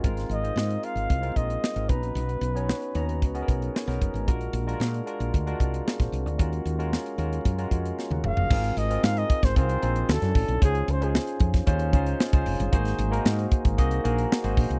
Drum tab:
CC |----------------|----------------|----------------|----------------|
HH |xxxx-xxxxxxx-xxx|xxxx-xxxxxxx-xxx|xxxx-xxxxxxx-xxx|xxxx-xxxxxxx----|
SD |-o--o-------o---|----o-------oo--|----o-------oo--|----o-------o---|
T1 |----------------|----------------|----------------|-------------o--|
T2 |----------------|----------------|----------------|--------------o-|
FT |----------------|----------------|----------------|---------------o|
BD |o-------o-o---o-|--------o-o---o-|o-------o-o--o--|o-------o-o-----|

CC |x---------------|----------------|----------------|
HH |-xxx-xxxxxxx-xox|xxxx-xxxxxxx-xox|xxxx-xxxxxxx-xox|
SD |----o--o----oo--|----o--o----o---|-o--o-------o---|
T1 |----------------|----------------|----------------|
T2 |----------------|----------------|----------------|
FT |----------------|----------------|----------------|
BD |o-----ooo-----o-|o-----ooo-o--o--|o-----ooo-----o-|